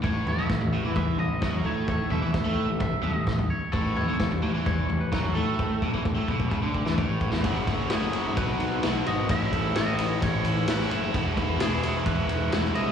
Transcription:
0.04 picked electric bass A1, overdriven electric guitar A2, clean electric guitar C#5, kick, floor tom
0.27 clean electric guitar E5, floor tom
0.37 picked electric bass B1, overdriven electric guitar B2
0.49 picked electric bass A1, overdriven electric guitar A2, kick, snare
0.61 picked electric bass A1, overdriven electric guitar A2, floor tom
0.72 picked electric bass A1, overdriven electric guitar A2
0.84 picked electric bass E2, overdriven electric guitar E3
0.96 clean electric guitar E5, kick, floor tom, mid tom
1.18 picked electric bass A1, overdriven electric guitar A2, clean electric guitar D#5, floor tom
1.41 picked electric bass F#2, overdriven electric guitar F#3, kick, snare
1.53 floor tom
1.64 picked electric bass A2, overdriven electric guitar A3, clean electric guitar C#5
1.88 clean electric guitar C#5, kick, floor tom
2.10 picked electric bass B1, overdriven electric guitar B2, clean electric guitar E5, floor tom
2.22 picked electric bass E2, overdriven electric guitar E3
2.33 picked electric bass A1, overdriven electric guitar A2, kick, snare
2.45 picked electric bass A2, overdriven electric guitar A3, floor tom
2.69 picked electric bass A1, overdriven electric guitar A2
2.80 clean electric guitar E5, kick, floor tom, mid tom
3.03 picked electric bass B1, overdriven electric guitar B2, clean electric guitar E5, floor tom
3.14 picked electric bass A1, overdriven electric guitar A2, clean electric guitar D#5
3.27 kick, snare
3.39 floor tom
3.50 clean electric guitar C#5
3.72 picked electric bass A1, overdriven electric guitar A2, clean electric guitar A4, kick, floor tom
3.97 clean electric guitar C#5, floor tom
4.07 picked electric bass B1, overdriven electric guitar B2
4.20 picked electric bass A1, overdriven electric guitar A2, kick, snare
4.30 picked electric bass A1, overdriven electric guitar A2, floor tom
4.42 picked electric bass A1, overdriven electric guitar A2
4.54 picked electric bass E2, overdriven electric guitar E3
4.66 clean electric guitar C#5, kick, floor tom, mid tom
4.89 picked electric bass A1, overdriven electric guitar A2, floor tom
5.01 clean electric guitar B4
5.12 picked electric bass F#2, overdriven electric guitar F#3, clean electric guitar B4, kick, snare
5.25 floor tom
5.33 picked electric bass A2, overdriven electric guitar A3, clean electric guitar A4
5.59 kick
5.82 picked electric bass B1, overdriven electric guitar B2, kick
5.93 picked electric bass E2, overdriven electric guitar E3, kick
6.05 picked electric bass A1, overdriven electric guitar A2, kick
6.16 picked electric bass A2, overdriven electric guitar A3
6.28 picked electric bass B1, overdriven electric guitar B2, kick
6.40 kick
6.50 picked electric bass C#2, overdriven electric guitar C#3, kick
6.62 picked electric bass D2, overdriven electric guitar D3
6.74 kick
6.85 picked electric bass E2, overdriven electric guitar E3, snare
6.98 picked electric bass A1, overdriven electric guitar A2, kick
7.21 kick
7.32 picked electric bass E2, overdriven electric guitar E3, snare
7.44 picked electric bass F#1, overdriven electric guitar F#2 C#3 F#3 A3 C#4 F#4, kick, ride
7.67 picked electric bass F#1, overdriven electric guitar F#3 A3 C#4 F#4, kick, ride
7.89 picked electric bass F#1, overdriven electric guitar F#2 C#3 F#3 A3 C#4 F#4, clean electric guitar G#4, snare, ride
8.13 overdriven electric guitar F#3 A3 C#4 F#4, ride
8.37 picked electric bass B1, overdriven electric guitar B2 F#3 B3 D#4 F#4, clean electric guitar B4, kick, ride
8.60 picked electric bass B1, ride
8.83 picked electric bass B1, overdriven electric guitar F#3 B3 D#4 F#4, snare, ride
9.06 picked electric bass G#1, overdriven electric guitar B3 D#4 F#4, clean electric guitar D#5, ride
9.29 picked electric bass A1, overdriven electric guitar A2 E3 A3 C#4 E4, clean electric guitar E5, kick, ride
9.52 picked electric bass A1, overdriven electric guitar A3 C#4 E4, kick, ride
9.75 picked electric bass A1, overdriven electric guitar A2 E3 A3 C#4 E4, clean electric guitar D#5, snare, ride
9.99 overdriven electric guitar A3 C#4 E4, ride
10.22 picked electric bass A1, clean electric guitar C#5, kick, ride
10.45 picked electric bass A1, ride
10.67 picked electric bass A1, overdriven electric guitar E3 A3 C#4 E4, clean electric guitar B4, snare, ride
10.81 snare
10.91 picked electric bass F#1, overdriven electric guitar A3 C#4 E4, ride
11.14 picked electric bass E1, overdriven electric guitar E2 B2 E3 G#3 B3 E4, kick, ride
11.37 picked electric bass E1, overdriven electric guitar E3 G#3 B3 E4, kick, ride
11.59 picked electric bass E1, overdriven electric guitar E2 B2 E3 G#3 B3 E4, clean electric guitar G#4, snare, ride
11.83 overdriven electric guitar E3 G#3 B3 E4, ride
12.06 picked electric bass E1, clean electric guitar B4, kick, ride
12.29 picked electric bass E1, ride
12.52 picked electric bass E1, overdriven electric guitar E3 G#3 B3 E4, snare, ride
12.65 snare
12.75 picked electric bass C2, overdriven electric guitar E3 G#3 B3 E4, clean electric guitar D#5, ride

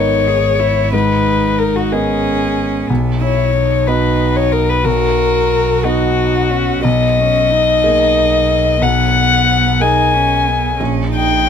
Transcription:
Already playing: double bass G#1, grand piano G#2 B3 A#4 D#5, cello D#4, violin C#5
0.28 cello G#4
0.60 cello E4
0.93 grand piano G#2, cello D#4, violin B4
1.58 violin A#4
1.76 violin F#4
1.92 grand piano B3 A#4 D#5, cello C#4, violin G#4
2.89 double bass B1, grand piano B1, cello B3
3.21 cello E4, violin C#5
3.53 cello D#4
3.87 grand piano B3 F#4 D#5, violin B4
4.36 violin C#5
4.52 violin A#4
4.69 violin B4
4.85 grand piano B1, cello F#4, violin A#4
5.84 grand piano B3 F#4 D#5, cello D#4, violin F#4
6.17 cello D#4
6.50 cello C#4
6.84 grand piano B1, double bass B1, cello B3, violin D#5
7.19 cello C#4
7.50 cello D#4
7.84 grand piano A#3 G#4 D#5
8.81 grand piano B1, cello B3, violin F#5
9.80 cello D#4, grand piano G#4 A#4 D#5, violin G#5
10.14 cello C#4
10.47 cello B3
10.79 grand piano A#1, double bass A#1, cello C#4
11.11 cello D#4
11.15 violin G5

